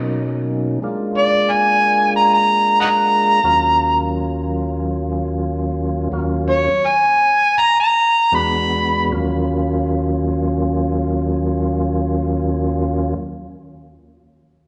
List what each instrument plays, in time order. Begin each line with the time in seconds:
Already playing: tonewheel organ B2 F#3 A#3 C#4 D#4
0.82 tonewheel organ G#3 A#3 D4 F4
1.18 harmonica D5
1.51 harmonica G#5
2.16 harmonica A#5
2.34 harmonica A#5
2.81 harmonica D#5 F#5 A#5
3.44 tonewheel organ D#2 F#3 A#3 C#4 F4
6.12 tonewheel organ D#2 F#3 A#3 C#4 F4
6.50 harmonica C#5
6.86 harmonica G#5
7.60 harmonica A#5
7.80 harmonica A#5
8.32 tonewheel organ E2 G#3 B3 D4 F#4, harmonica B5
9.12 tonewheel organ D#2 F#3 A#3 C#4 F4